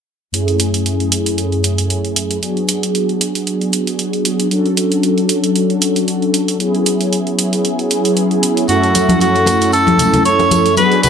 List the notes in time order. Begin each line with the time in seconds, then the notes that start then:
0.32 F#2 A3 C#4 E4 G#4, closed hi-hat
0.48 closed hi-hat
0.60 closed hi-hat
0.74 closed hi-hat
0.86 closed hi-hat
1.00 closed hi-hat
1.12 closed hi-hat
1.26 closed hi-hat
1.38 closed hi-hat
1.52 closed hi-hat
1.64 closed hi-hat
1.78 closed hi-hat
1.90 closed hi-hat
2.05 closed hi-hat
2.16 closed hi-hat
2.31 closed hi-hat
2.41 F#3 B3 D4 F#4 G#4, closed hi-hat
2.57 closed hi-hat
2.69 closed hi-hat
2.83 closed hi-hat
2.95 closed hi-hat
3.09 closed hi-hat
3.21 closed hi-hat
3.35 closed hi-hat
3.47 closed hi-hat
3.61 closed hi-hat
3.73 closed hi-hat
3.87 closed hi-hat
3.99 closed hi-hat
4.13 closed hi-hat
4.25 closed hi-hat
4.40 closed hi-hat
4.50 F#3 C#4 D4 F#4 A4, closed hi-hat
4.66 closed hi-hat
4.77 closed hi-hat
4.92 closed hi-hat
5.03 closed hi-hat
5.18 closed hi-hat
5.29 closed hi-hat
5.44 closed hi-hat
5.56 closed hi-hat
5.70 closed hi-hat
5.82 closed hi-hat
5.96 closed hi-hat
6.08 closed hi-hat
6.22 closed hi-hat
6.34 closed hi-hat
6.48 closed hi-hat
6.58 F#3 B3 C#4 E4 G#4, closed hi-hat
6.75 closed hi-hat
6.86 closed hi-hat
7.01 closed hi-hat
7.13 closed hi-hat
7.27 closed hi-hat
7.39 closed hi-hat
7.53 closed hi-hat
7.65 closed hi-hat
7.79 closed hi-hat
7.91 closed hi-hat
8.05 closed hi-hat
8.17 closed hi-hat
8.31 closed hi-hat
8.43 closed hi-hat
8.57 closed hi-hat
8.68 F#2 A3 C#4 E4 F#4 A4, closed hi-hat, tambourine
8.83 closed hi-hat, tambourine
8.95 closed hi-hat, tambourine, muted conga
9.09 closed hi-hat, tambourine, high conga
9.20 F#4, closed hi-hat, tambourine
9.35 closed hi-hat, tambourine
9.46 closed hi-hat, tambourine, muted conga
9.61 closed hi-hat, tambourine
9.72 A4, closed hi-hat, tambourine
9.87 closed hi-hat, tambourine, muted conga, high conga
9.99 closed hi-hat, tambourine, low conga
10.13 closed hi-hat, tambourine, low conga
10.25 C#5, closed hi-hat, tambourine
10.39 closed hi-hat, tambourine, muted conga
10.51 closed hi-hat, tambourine, high conga
10.66 closed hi-hat, tambourine
10.76 F#3 B3 D4 F#4 G#4 B4, closed hi-hat, tambourine, muted conga
10.92 closed hi-hat, tambourine
11.03 B4, closed hi-hat, tambourine, low conga